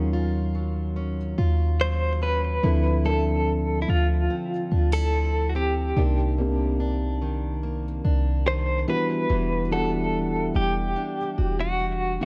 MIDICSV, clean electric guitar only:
0, 0, Header, 1, 2, 480
1, 0, Start_track
1, 0, Tempo, 833333
1, 1516, Time_signature, 4, 2, 24, 8
1, 7057, End_track
2, 0, Start_track
2, 0, Title_t, "Clean electric guitar"
2, 0, Program_c, 0, 27
2, 1042, Note_on_c, 0, 72, 98
2, 1281, Note_off_c, 0, 72, 0
2, 1283, Note_on_c, 0, 71, 103
2, 1758, Note_off_c, 0, 71, 0
2, 1761, Note_on_c, 0, 69, 88
2, 2198, Note_off_c, 0, 69, 0
2, 2201, Note_on_c, 0, 64, 61
2, 2239, Note_off_c, 0, 64, 0
2, 2245, Note_on_c, 0, 65, 78
2, 2842, Note_on_c, 0, 69, 98
2, 2858, Note_off_c, 0, 65, 0
2, 3164, Note_on_c, 0, 66, 58
2, 3168, Note_off_c, 0, 69, 0
2, 3200, Note_off_c, 0, 66, 0
2, 3202, Note_on_c, 0, 67, 78
2, 3656, Note_off_c, 0, 67, 0
2, 4883, Note_on_c, 0, 72, 103
2, 5103, Note_off_c, 0, 72, 0
2, 5125, Note_on_c, 0, 71, 102
2, 5599, Note_off_c, 0, 71, 0
2, 5602, Note_on_c, 0, 69, 89
2, 6081, Note_off_c, 0, 69, 0
2, 6083, Note_on_c, 0, 67, 85
2, 6682, Note_off_c, 0, 67, 0
2, 6684, Note_on_c, 0, 66, 83
2, 7037, Note_off_c, 0, 66, 0
2, 7057, End_track
0, 0, End_of_file